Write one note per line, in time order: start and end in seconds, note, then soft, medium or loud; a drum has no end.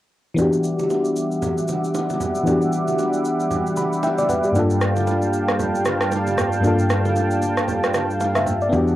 0.34 2.41 E3 medium
0.34 8.96 G3 medium
0.34 2.42 B3 medium
0.34 2.43 D4 medium
0.34 4.51 E5 medium
0.34 4.51 F#5 medium
0.34 4.51 D6 medium
0.34 shaker medium
0.38 2.44 F#4 medium
0.38 2.44 G4 medium
0.38 low conga medium
0.53 shaker medium
0.64 shaker medium
0.79 low bongo medium
0.79 shaker soft
0.90 high bongo medium
0.90 shaker medium
1.05 shaker soft
1.16 shaker medium
1.31 shaker soft
1.42 low conga medium
1.42 shaker medium
1.58 shaker medium
1.68 low bongo medium
1.68 shaker medium
1.84 shaker soft
1.94 high bongo medium
1.94 shaker medium
2.10 low bongo medium
2.10 shaker medium
2.20 low conga medium
2.20 shaker medium
2.35 shaker medium
2.43 4.50 E3 medium
2.43 4.51 B3 medium
2.43 4.51 D4 medium
2.43 low conga medium
2.43 shaker medium
2.49 4.01 F#4 medium
2.49 4.02 G4 medium
2.62 shaker medium
2.73 shaker medium
2.88 low bongo medium
2.88 shaker medium
2.99 high bongo medium
2.99 shaker medium
3.13 shaker soft
3.25 shaker medium
3.40 shaker soft
3.51 low conga medium
3.51 shaker medium
3.67 shaker medium
3.77 4.01 B5 medium
3.77 low bongo medium
3.77 shaker medium
3.93 shaker soft
4.03 4.18 E5 medium
4.03 4.27 G5 medium
4.03 high bongo medium
4.03 shaker medium
4.18 4.29 D5 medium
4.18 low bongo medium
4.18 shaker medium
4.29 4.44 B4 medium
4.29 4.54 F#5 medium
4.29 low conga medium
4.29 shaker medium
4.44 4.69 G4 medium
4.44 shaker medium
4.52 6.58 G2 medium
4.52 6.59 A#3 medium
4.52 6.60 D4 medium
4.52 8.69 F5 medium
4.52 8.69 G5 medium
4.52 8.69 A5 medium
4.52 low conga medium
4.52 shaker medium
4.57 6.61 F4 medium
4.57 6.62 A4 medium
4.70 shaker medium
4.81 cross-stick medium
4.81 shaker medium
4.96 low bongo medium
4.96 shaker medium
5.07 high bongo medium
5.07 shaker medium
5.22 shaker soft
5.33 shaker medium
5.48 cross-stick medium
5.48 shaker soft
5.59 low conga medium
5.59 shaker medium
5.75 shaker medium
5.85 cross-stick medium
5.85 low bongo medium
5.85 shaker medium
6.01 cross-stick medium
6.01 shaker soft
6.12 high bongo medium
6.12 shaker medium
6.27 low bongo medium
6.27 shaker medium
6.37 cross-stick medium
6.37 low conga medium
6.37 shaker medium
6.52 shaker medium
6.61 8.67 G2 medium
6.61 8.68 A#3 medium
6.61 8.69 D4 medium
6.61 low conga medium
6.61 shaker medium
6.66 8.70 F4 medium
6.66 8.70 A4 medium
6.79 shaker medium
6.90 cross-stick medium
6.90 high bongo medium
6.90 shaker medium
7.05 low bongo medium
7.05 shaker soft
7.16 high bongo medium
7.16 shaker medium
7.31 shaker soft
7.42 low bongo soft
7.42 shaker medium
7.57 cross-stick medium
7.57 shaker soft
7.68 low conga medium
7.68 shaker medium
7.84 cross-stick medium
7.84 shaker medium
7.94 cross-stick medium
7.94 low bongo medium
7.94 shaker medium
8.10 shaker soft
8.20 8.35 F5 medium
8.20 high bongo medium
8.20 shaker medium
8.35 8.60 E5 medium
8.35 cross-stick medium
8.35 low bongo medium
8.35 shaker medium
8.46 low conga medium
8.46 shaker medium
8.61 8.87 D5 medium
8.61 shaker medium
8.69 8.96 E2 medium
8.69 8.96 B3 medium
8.69 8.96 D4 medium
8.69 8.96 E5 medium
8.69 8.96 F#5 medium
8.69 8.96 D6 medium
8.69 shaker medium
8.73 8.96 F#4 medium
8.73 8.96 G4 medium
8.73 low conga medium
8.88 shaker medium